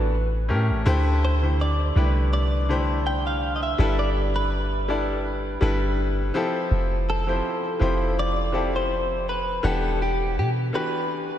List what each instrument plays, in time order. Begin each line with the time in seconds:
Already playing: 808-style bass A1, grand piano E3 B3 D4 F#4 G4 A4
0.49 grand piano A2 A3 C#4 G4 A#4, 808-style bass A2
0.69 808-style bass A1
0.86 808-style bass D2, grand piano D3 A3 E4 G4 C5
1.25 clean electric guitar C5
1.42 grand piano D3 A3 E4 G4 C5
1.61 clean electric guitar D5
1.95 808-style bass C2, grand piano D3 A3 E4 G4 B4
2.33 clean electric guitar D5
2.69 grand piano D3 A3 E4 G4 C5
3.07 clean electric guitar G5
3.27 clean electric guitar F5
3.56 clean electric guitar D#5
3.63 clean electric guitar E5
3.78 808-style bass G1, grand piano G3 D4 E4 A4 B4
3.99 clean electric guitar D5
4.36 clean electric guitar B4
4.88 grand piano G3 D4 E4 A4 D5
5.61 808-style bass G1, grand piano G3 D4 E4 A4 B4
6.34 grand piano F3 C4 E4 G4 A4
6.71 808-style bass F1
7.10 clean electric guitar A4
7.27 grand piano F3 C4 E4 G4 C5
7.80 808-style bass F1, grand piano F3 C4 E4 G4 C5
8.19 clean electric guitar D5
8.52 grand piano F3 C4 E4 G4 A4
8.76 clean electric guitar C5
9.29 clean electric guitar B4
9.63 808-style bass E1, grand piano E3 B3 D4 G4 F#5, clean electric guitar A4
10.02 clean electric guitar G4
10.37 808-style bass B2, clean electric guitar G4
10.73 grand piano E3 B3 D4 F#4 G4, clean electric guitar B4